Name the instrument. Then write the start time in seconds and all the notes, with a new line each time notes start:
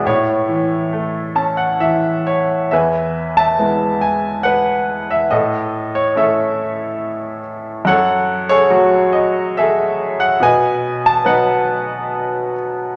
grand piano
0.05 A2 C#5
0.09 E4
0.48 E3
0.93 A3
1.35 C#4 A5
1.57 F#5
1.80 E3 E5
2.27 C#5
2.71 E2 B4 E5 G#5
3.37 E5 A5
3.58 G#3 B3 E4
4.01 G#5
4.43 B4 F#5
5.11 E5
5.31 A2 A4 D#5
5.95 C#5
6.15 A3 C#4 E4 A4 C#5 E5
7.85 F#2 A4 C#5 F#5
8.49 G#4 A4 C#5
8.70 F#3 A3 F#4
9.13 D#5
9.57 G#4 A4 E5
10.20 F#5
10.40 B2 B4 D#5 G#5
11.06 A5
11.25 F#3 B3 D#4 B4 D#5 F#5